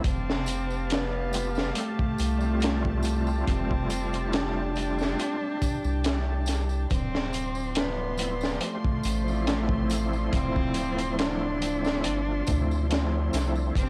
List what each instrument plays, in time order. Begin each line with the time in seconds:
0.04 sub bass F1, cello C4, string section G4 F5 A5, kick, closed hi-hat, tambourine
0.30 snare
0.46 closed hi-hat, tambourine
0.70 tambourine
0.90 cello B3, snare, closed hi-hat, tambourine
1.32 tonewheel organ G3 A3 C4 F4, closed hi-hat, tambourine
1.55 snare, tambourine
1.74 tonewheel organ G3 A3 C4, cello A3, closed hi-hat, tambourine
1.79 tonewheel organ A4
1.99 kick
2.18 sub bass C2, closed hi-hat, tambourine
2.38 tonewheel organ G3 A3, tambourine
2.44 tonewheel organ C4 F4
2.60 closed hi-hat, tambourine
2.64 snare
2.85 kick
3.03 closed hi-hat, tambourine
3.27 tambourine
3.43 cello D4
3.47 sub bass F1, cello C4, string section G5, kick, closed hi-hat, tambourine
3.71 kick
3.90 closed hi-hat, tambourine
4.13 closed hi-hat, tambourine
4.28 cello E4
4.32 cello D4, snare, closed hi-hat, tambourine
4.75 tonewheel organ G3 A3 C4, closed hi-hat, tambourine
4.80 tonewheel organ F4
4.99 snare, tambourine
5.19 closed hi-hat, tambourine
5.41 tonewheel organ G3 A3 C4 G4
5.62 kick, closed hi-hat, tambourine
5.84 sub bass C2, tambourine
6.04 snare, closed hi-hat, tambourine
6.46 snare, closed hi-hat, tambourine
6.69 tambourine
6.90 sub bass D1, string section F3 D5 C6, cello C4, kick, closed hi-hat, tambourine
7.15 snare
7.33 closed hi-hat, tambourine
7.55 tambourine
7.75 cello B3, snare, closed hi-hat, tambourine
8.18 tonewheel organ F3 A3 C4, closed hi-hat, tambourine
8.22 tonewheel organ E4
8.41 snare, tambourine
8.60 tonewheel organ F3 A3 C4, closed hi-hat, tambourine
8.64 cello A3, tonewheel organ G4
8.84 kick
9.03 sub bass A1, closed hi-hat, tambourine
9.24 tonewheel organ F3 A3, tambourine
9.29 tonewheel organ C4 E4
9.47 snare, closed hi-hat, tambourine
9.69 kick
9.90 closed hi-hat, tambourine
10.13 tambourine
10.33 sub bass D1, cello C4, kick, closed hi-hat, tambourine
10.56 kick
10.74 closed hi-hat, tambourine
10.98 closed hi-hat, tambourine
11.19 cello D4, snare, closed hi-hat, tambourine
11.61 tonewheel organ F3 A3 C4, closed hi-hat, tambourine
11.65 tonewheel organ E4
11.85 snare, tambourine
12.04 sub bass G1, closed hi-hat, tambourine
12.27 tonewheel organ F3 A3 C4
12.31 tonewheel organ F4
12.47 sub bass D2, tonewheel organ F3 A3 C4, kick, closed hi-hat, tambourine
12.51 tonewheel organ E4
12.71 tambourine
12.89 tonewheel organ F3 A3 C4, snare, closed hi-hat, tambourine
12.94 tonewheel organ E4
13.33 sub bass C2, snare, closed hi-hat, tambourine
13.56 tambourine
13.75 sub bass F1, cello C4, string section G4 F5 A5, kick, closed hi-hat, tambourine